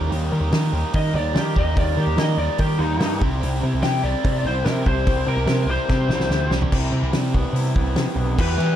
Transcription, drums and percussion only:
0.12 open hi-hat
0.52 snare, open hi-hat
0.93 kick, open hi-hat
1.36 snare, open hi-hat
1.56 kick
1.77 kick, open hi-hat
2.18 snare, open hi-hat
2.58 kick, open hi-hat
3.00 snare, open hi-hat
3.22 kick
3.43 open hi-hat
3.83 snare, open hi-hat
4.25 kick, open hi-hat
4.66 snare, open hi-hat
4.86 kick
5.07 kick, open hi-hat
5.47 snare, open hi-hat
5.89 kick, snare
6.10 snare
6.20 snare
6.31 snare
6.51 snare
6.62 floor tom
6.72 kick, crash
7.13 snare, open hi-hat
7.34 kick
7.56 open hi-hat
7.76 kick
7.96 snare, open hi-hat
8.39 kick, crash
8.60 ride

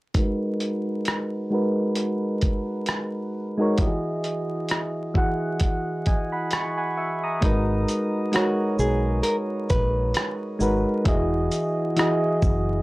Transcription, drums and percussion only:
0.14 kick, closed hi-hat
0.60 closed hi-hat
1.05 cross-stick, closed hi-hat
1.96 closed hi-hat
2.41 kick, closed hi-hat
2.86 cross-stick, closed hi-hat
3.78 kick, closed hi-hat
4.24 closed hi-hat
4.68 cross-stick, closed hi-hat
5.15 kick
5.60 kick, closed hi-hat
6.06 kick, closed hi-hat
6.51 cross-stick, closed hi-hat
7.42 kick, closed hi-hat
7.88 closed hi-hat, shaker
8.33 cross-stick, closed hi-hat
8.79 shaker
9.23 closed hi-hat
9.70 kick, closed hi-hat, shaker
10.14 cross-stick, closed hi-hat
10.60 shaker
11.05 kick, closed hi-hat
11.52 closed hi-hat, shaker
11.96 cross-stick, closed hi-hat
12.42 kick, shaker

